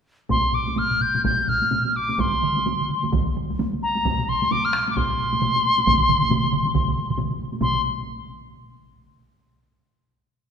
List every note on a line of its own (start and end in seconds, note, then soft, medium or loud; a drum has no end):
0.29 0.56 C6 medium
0.29 taiko medium
0.29 taiko low-mid medium
0.29 taiko high medium
0.53 0.80 D6 medium
0.53 taiko low-mid medium
0.68 taiko high soft
0.77 1.03 F6 medium
0.77 taiko low-mid medium
0.77 taiko high medium
0.91 taiko low-mid medium
1.01 1.25 G6 medium
1.01 taiko low-mid medium
1.15 taiko low-mid medium
1.15 taiko high soft
1.24 1.50 G6 medium
1.24 taiko medium
1.24 taiko low-mid medium
1.24 taiko high medium
1.48 1.98 F6 medium
1.48 taiko low-mid medium
1.62 taiko high soft
1.71 taiko low-mid medium
1.71 taiko high medium
1.86 taiko high soft
1.96 2.22 D6 medium
2.09 taiko high medium
2.19 3.13 C6 medium
2.19 taiko medium
2.19 taiko mid medium
2.19 taiko high medium
2.43 taiko mid medium
2.56 taiko high soft
2.66 taiko mid medium
2.66 taiko high medium
2.81 taiko mid medium
2.90 taiko mid medium
3.03 taiko mid medium
3.03 taiko high soft
3.12 taiko medium
3.12 taiko mid medium
3.12 taiko high medium
3.37 taiko mid medium
3.50 taiko high soft
3.59 taiko mid medium
3.59 taiko high medium
3.73 taiko high soft
3.83 4.30 A#5 medium
3.96 taiko high soft
4.05 taiko medium
4.05 taiko low-mid medium
4.05 taiko high medium
4.19 taiko low-mid medium
4.28 4.53 C6 medium
4.28 taiko low-mid medium
4.42 taiko low-mid medium
4.42 taiko high medium
4.51 4.66 D6 medium
4.51 taiko low-mid medium
4.51 taiko high medium
4.65 4.90 F6 medium
4.73 taiko rim medium
4.88 4.98 D6 medium
4.88 taiko high soft
4.96 7.18 C6 medium
4.96 taiko medium
4.96 taiko low-mid medium
4.96 taiko high medium
5.10 taiko low-mid medium
5.19 taiko low-mid medium
5.33 taiko low-mid medium
5.33 taiko high medium
5.42 taiko low-mid medium
5.42 taiko high medium
5.56 taiko high medium
5.78 taiko high medium
5.87 taiko medium
5.87 taiko low-mid medium
5.87 taiko mid medium
5.87 taiko high medium
6.09 taiko low-mid medium
6.09 taiko mid medium
6.22 taiko high soft
6.30 taiko low-mid medium
6.30 taiko mid medium
6.30 taiko high medium
6.44 taiko low-mid medium
6.44 taiko mid medium
6.52 taiko low-mid medium
6.52 taiko mid medium
6.66 taiko high soft
6.74 taiko medium
6.74 taiko low-mid medium
6.74 taiko mid medium
6.74 taiko high soft
6.88 taiko low-mid medium
6.88 taiko mid medium
7.09 taiko low-mid medium
7.09 taiko mid medium
7.18 taiko low-mid medium
7.18 taiko mid medium
7.18 taiko high medium
7.30 taiko high soft
7.52 taiko high soft
7.61 7.82 C6 medium
7.61 taiko medium
7.61 taiko low-mid medium
7.61 taiko mid medium
7.61 taiko high medium